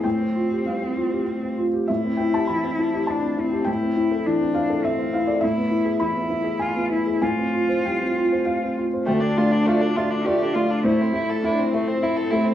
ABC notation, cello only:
X:1
M:3/4
L:1/8
Q:1/4=101
K:Am
V:1 name="Cello"
C4- C z | E4 D C | E2 D2 C2 | E2 E2 F E |
F4- F z | D4 G F | E2 D C3 |]